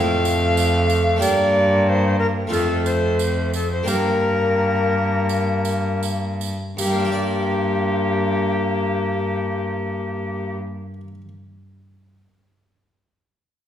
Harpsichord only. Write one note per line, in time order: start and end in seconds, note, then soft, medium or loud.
0.00 1.17 F2 medium
0.00 1.16 C4 medium
0.00 1.16 F4 medium
0.00 1.17 A4 medium
1.16 2.47 G2 medium
1.16 2.45 A#3 medium
1.16 2.46 D4 medium
1.16 2.47 G4 medium
2.47 3.83 F2 medium
2.47 3.81 A3 medium
2.47 3.82 F4 medium
2.47 3.82 A4 medium
3.83 6.50 G2 medium
3.83 6.72 A#3 medium
3.83 6.73 D4 medium
3.83 6.74 G4 soft
6.77 10.93 G2 medium
6.84 11.01 G3 medium
6.91 11.07 A#3 medium
6.98 11.14 D4 medium
7.05 11.21 G4 medium
7.12 11.28 D5 medium